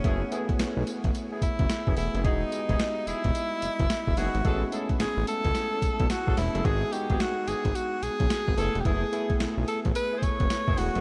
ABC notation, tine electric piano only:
X:1
M:4/4
L:1/8
Q:"Swing 16ths" 1/4=109
K:F#dor
V:1 name="Tine electric piano"
[A,B,EG] [A,B,EG]3 z3 [A,B,EG] | [G,B,DF] [G,B,=G^Gd]3 z3 [G,B,DF] | [G,B,CE] [A,B,CE]3 z3 [G,B,CE] | [G,B,DF] [G,B,DF]3 z3 [A,B,EG]- |
[A,B,EG] [A,B,EG]3 z3 [A,B,EG] |]